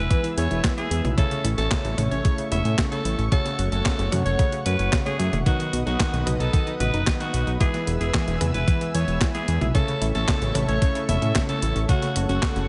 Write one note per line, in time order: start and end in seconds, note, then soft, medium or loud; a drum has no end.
0.00 1.14 G#3 medium
0.00 1.14 B3 medium
0.00 1.14 E4 medium
0.00 0.29 B4 loud
0.00 1.14 B4 medium
0.00 1.14 B4 loud
0.00 3.28 E5 medium
0.00 1.15 G#5 medium
0.00 1.15 E6 medium
0.10 0.23 E3 loud
0.10 kick loud
0.10 closed hi-hat medium
0.24 0.30 E3 loud
0.24 closed hi-hat soft
0.37 0.48 E2 loud
0.37 0.48 G#4 medium
0.37 0.70 C#5 loud
0.37 closed hi-hat medium
0.51 0.61 E1 medium
0.51 0.63 E4 medium
0.51 closed hi-hat soft
0.64 0.76 E3 loud
0.64 kick loud
0.64 snare loud
0.64 clap loud
0.64 closed hi-hat medium
0.77 0.84 E3 loud
0.77 1.10 G#4 medium
0.77 closed hi-hat soft
0.91 1.01 E2 loud
0.91 1.02 G#4 medium
0.91 closed hi-hat loud
1.04 1.15 B1 medium
1.04 1.17 E4 medium
1.04 closed hi-hat soft
1.04 high tom medium
1.17 1.30 C#3 loud
1.17 1.95 A3 loud
1.17 5.42 A3 medium
1.17 1.95 C#4 medium
1.17 1.95 E4 medium
1.17 1.50 A4 loud
1.17 3.30 C#5 medium
1.17 1.95 C#5 loud
1.17 5.42 C#6 medium
1.17 kick loud
1.17 closed hi-hat medium
1.31 1.37 C#3 loud
1.31 closed hi-hat soft
1.44 1.55 A1 medium
1.44 1.55 E4 medium
1.44 closed hi-hat loud
1.58 1.68 A1 medium
1.58 1.71 C#4 medium
1.58 2.01 A4 loud
1.58 snare soft
1.58 closed hi-hat soft
1.71 1.83 C#3 loud
1.71 kick loud
1.71 snare loud
1.71 clap loud
1.71 closed hi-hat medium
1.85 1.95 A1 medium
1.85 1.91 C#3 loud
1.85 closed hi-hat soft
1.98 2.08 A1 loud
1.98 3.29 A3 medium
1.98 3.29 C#4 medium
1.98 2.09 E4 medium
1.98 3.29 E4 medium
1.98 3.29 C#5 loud
1.98 closed hi-hat medium
1.98 high tom medium
2.11 2.22 A1 medium
2.11 2.24 C#4 medium
2.11 2.44 C#5 loud
2.11 closed hi-hat soft
2.25 2.37 C#3 loud
2.25 kick loud
2.25 closed hi-hat medium
2.38 2.45 C#3 loud
2.38 closed hi-hat soft
2.51 2.62 E1 loud
2.51 2.62 E4 medium
2.51 2.84 E5 loud
2.51 closed hi-hat medium
2.51 high tom medium
2.65 2.75 A2 medium
2.65 2.78 C#4 medium
2.65 closed hi-hat soft
2.78 2.90 C#3 loud
2.78 kick loud
2.78 snare loud
2.78 clap loud
2.78 closed hi-hat medium
2.91 2.98 C#3 loud
2.91 3.24 A4 medium
2.91 closed hi-hat soft
3.05 3.15 A1 medium
3.05 3.16 E4 medium
3.05 closed hi-hat medium
3.18 3.29 A1 medium
3.18 3.31 C#4 medium
3.18 closed hi-hat soft
3.31 3.44 C#3 loud
3.31 4.09 A3 medium
3.31 4.09 C#4 medium
3.31 4.09 F#4 medium
3.31 3.64 A4 loud
3.31 5.44 C#5 medium
3.31 4.09 C#5 medium
3.31 7.56 F#5 medium
3.31 kick loud
3.31 closed hi-hat medium
3.45 3.52 C#3 loud
3.45 snare soft
3.45 closed hi-hat soft
3.58 3.69 F#1 medium
3.58 3.69 F#4 medium
3.58 closed hi-hat medium
3.72 3.82 F#1 medium
3.72 3.85 C#4 medium
3.72 4.15 A4 loud
3.72 closed hi-hat soft
3.85 3.98 C#3 loud
3.85 kick loud
3.85 snare loud
3.85 clap loud
3.85 closed hi-hat medium
3.99 4.09 F#1 medium
3.99 4.05 C#3 loud
3.99 closed hi-hat soft
4.12 4.23 F#2 loud
4.12 4.63 A3 medium
4.12 4.63 C#4 medium
4.12 4.23 F#4 medium
4.12 4.63 F#4 medium
4.12 4.63 C#5 loud
4.12 closed hi-hat medium
4.12 high tom medium
4.25 4.36 F#1 medium
4.25 4.38 C#4 medium
4.25 4.58 C#5 loud
4.25 closed hi-hat soft
4.39 4.51 C#3 loud
4.39 kick loud
4.39 closed hi-hat medium
4.52 4.59 C#3 loud
4.52 closed hi-hat soft
4.66 4.76 F#2 loud
4.66 5.03 A3 medium
4.66 5.03 C#4 medium
4.66 4.76 F#4 medium
4.66 5.03 F#4 medium
4.66 4.98 B4 medium
4.66 5.03 C#5 medium
4.66 closed hi-hat medium
4.79 4.90 F#1 medium
4.79 4.92 C#4 medium
4.79 closed hi-hat soft
4.93 5.05 C#3 loud
4.93 kick loud
4.93 snare loud
4.93 clap loud
4.93 closed hi-hat medium
5.05 5.12 C#3 loud
5.05 5.16 A3 medium
5.05 5.16 C#4 medium
5.05 5.16 F#4 medium
5.05 5.38 G#4 medium
5.05 5.16 C#5 medium
5.05 closed hi-hat soft
5.19 5.30 F#2 loud
5.19 5.43 A3 medium
5.19 5.43 C#4 medium
5.19 5.43 F#4 medium
5.19 5.30 F#4 medium
5.19 5.43 E5 medium
5.19 closed hi-hat medium
5.33 5.43 E1 medium
5.33 5.46 C#4 medium
5.33 closed hi-hat soft
5.33 high tom medium
5.46 5.58 D#3 loud
5.46 6.23 F#3 loud
5.46 6.23 B3 medium
5.46 6.23 D#4 loud
5.46 5.79 F#4 loud
5.46 9.71 B4 medium
5.46 6.23 B4 loud
5.46 7.58 D#5 medium
5.46 7.58 D#6 medium
5.46 kick loud
5.46 closed hi-hat medium
5.59 5.66 D#3 loud
5.59 closed hi-hat soft
5.73 5.83 B1 medium
5.73 5.84 F#4 medium
5.73 closed hi-hat medium
5.86 5.97 B1 medium
5.86 5.99 D#4 medium
5.86 6.29 F#4 loud
5.86 snare soft
5.86 closed hi-hat soft
6.00 6.12 D#3 loud
6.00 kick loud
6.00 snare loud
6.00 clap loud
6.00 closed hi-hat medium
6.13 6.24 B1 medium
6.13 6.20 D#3 loud
6.13 closed hi-hat soft
6.26 6.37 B1 loud
6.26 7.57 F#3 medium
6.26 7.57 B3 medium
6.26 7.57 D#4 medium
6.26 6.37 F#4 medium
6.26 7.57 B4 loud
6.26 closed hi-hat medium
6.26 high tom medium
6.40 6.50 B1 medium
6.40 6.53 D#4 medium
6.40 6.72 A4 loud
6.40 closed hi-hat soft
6.53 6.66 D#3 loud
6.53 kick loud
6.53 closed hi-hat medium
6.67 6.73 D#3 loud
6.67 closed hi-hat soft
6.80 6.91 A1 medium
6.80 6.91 F#4 medium
6.80 7.13 B4 medium
6.80 closed hi-hat medium
6.80 high tom medium
6.93 7.04 F#1 medium
6.93 7.06 D#4 medium
6.93 closed hi-hat soft
7.07 7.19 D#3 loud
7.07 kick loud
7.07 snare loud
7.07 clap loud
7.07 closed hi-hat medium
7.20 7.27 D#3 loud
7.20 7.53 F#4 loud
7.20 closed hi-hat soft
7.34 7.44 B1 loud
7.34 7.44 F#4 medium
7.34 closed hi-hat medium
7.47 7.58 B1 medium
7.47 7.60 D#4 medium
7.47 closed hi-hat soft
7.60 7.73 E3 loud
7.60 8.38 G#3 loud
7.60 8.38 B3 medium
7.60 8.38 E4 medium
7.60 7.93 G#4 loud
7.60 8.38 B4 medium
7.60 11.85 E5 medium
7.60 9.73 G#5 medium
7.60 9.73 E6 medium
7.60 kick loud
7.60 closed hi-hat medium
7.74 7.80 E3 loud
7.74 snare soft
7.74 closed hi-hat soft
7.87 7.98 E1 medium
7.87 7.98 G#4 medium
7.87 closed hi-hat medium
8.00 8.11 E1 medium
8.00 8.13 E4 medium
8.00 8.44 G#4 loud
8.00 closed hi-hat soft
8.14 8.26 E3 loud
8.14 kick loud
8.14 snare loud
8.14 clap loud
8.14 closed hi-hat medium
8.27 8.38 E1 medium
8.27 8.34 E3 loud
8.27 closed hi-hat soft
8.41 8.51 E2 loud
8.41 9.72 G#3 medium
8.41 9.72 B3 medium
8.41 9.72 E4 medium
8.41 8.52 G#4 medium
8.41 9.72 B4 loud
8.41 closed hi-hat medium
8.41 high tom medium
8.54 8.65 E1 medium
8.54 8.67 E4 medium
8.54 8.86 B4 loud
8.54 closed hi-hat soft
8.68 8.80 E3 loud
8.68 kick loud
8.68 closed hi-hat medium
8.81 8.87 E3 loud
8.81 closed hi-hat soft
8.94 9.05 E2 loud
8.94 9.05 G#4 medium
8.94 9.27 C#5 medium
8.94 closed hi-hat loud
9.08 9.18 E1 medium
9.08 9.21 E4 medium
9.08 closed hi-hat soft
9.21 9.33 E3 loud
9.21 kick loud
9.21 snare loud
9.21 clap loud
9.21 closed hi-hat medium
9.34 9.41 E3 loud
9.34 9.67 G#4 medium
9.34 closed hi-hat soft
9.48 9.58 E2 loud
9.48 9.59 G#4 medium
9.48 closed hi-hat medium
9.61 9.72 B1 medium
9.61 9.74 E4 medium
9.61 closed hi-hat soft
9.61 high tom medium
9.74 9.87 C#3 loud
9.74 10.52 A3 loud
9.74 10.52 C#4 medium
9.74 10.52 E4 medium
9.74 10.07 A4 loud
9.74 11.87 A4 medium
9.74 12.68 C#5 medium
9.74 10.52 C#5 loud
9.74 11.87 C#6 medium
9.74 kick loud
9.74 closed hi-hat medium
9.88 9.94 C#3 loud
9.88 closed hi-hat soft
10.01 10.12 A1 medium
10.01 10.12 E4 medium
10.01 closed hi-hat loud
10.15 10.25 A1 medium
10.15 10.28 C#4 medium
10.15 10.58 A4 loud
10.15 snare soft
10.15 closed hi-hat soft
10.28 10.40 C#3 loud
10.28 kick loud
10.28 snare loud
10.28 clap loud
10.28 closed hi-hat medium
10.42 10.52 A1 medium
10.42 10.48 C#3 loud
10.42 closed hi-hat soft
10.55 10.65 A1 medium
10.55 11.86 A3 loud
10.55 11.86 C#4 medium
10.55 10.66 E4 medium
10.55 11.86 E4 medium
10.55 11.86 C#5 loud
10.55 closed hi-hat loud
10.55 high tom medium
10.68 10.79 A1 medium
10.68 10.81 C#4 medium
10.68 11.01 C#5 medium
10.68 closed hi-hat soft
10.82 10.94 C#3 loud
10.82 kick loud
10.82 closed hi-hat medium
10.95 11.02 C#3 loud
10.95 closed hi-hat soft
11.09 11.19 E1 loud
11.09 11.19 E4 medium
11.09 11.41 E5 medium
11.09 closed hi-hat loud
11.09 high tom medium
11.22 11.33 A2 medium
11.22 11.35 C#4 medium
11.22 closed hi-hat soft
11.35 11.48 C#3 loud
11.35 kick loud
11.35 snare loud
11.35 clap loud
11.35 closed hi-hat medium
11.49 11.55 C#3 loud
11.49 11.81 A4 loud
11.49 closed hi-hat soft
11.62 11.73 A1 medium
11.62 11.73 E4 medium
11.62 closed hi-hat loud
11.76 11.86 A1 medium
11.76 11.88 C#4 medium
11.76 closed hi-hat soft
11.88 12.01 C#3 loud
11.88 12.66 A3 loud
11.88 12.66 C#4 medium
11.88 12.21 F#4 loud
11.88 12.66 F#4 medium
11.88 12.68 A4 medium
11.88 12.66 C#5 loud
11.88 12.68 F#5 medium
11.88 12.68 C#6 medium
11.88 kick loud
11.88 closed hi-hat medium
12.02 12.09 C#3 loud
12.02 snare soft
12.02 closed hi-hat soft
12.16 12.26 F#1 medium
12.16 12.26 F#4 medium
12.16 closed hi-hat loud
12.29 12.40 F#1 medium
12.29 12.42 C#4 medium
12.29 12.68 F#4 loud
12.29 closed hi-hat soft
12.42 12.55 C#3 loud
12.42 kick loud
12.42 snare loud
12.42 clap loud
12.42 closed hi-hat medium
12.56 12.66 F#1 medium
12.56 12.62 C#3 loud
12.56 closed hi-hat soft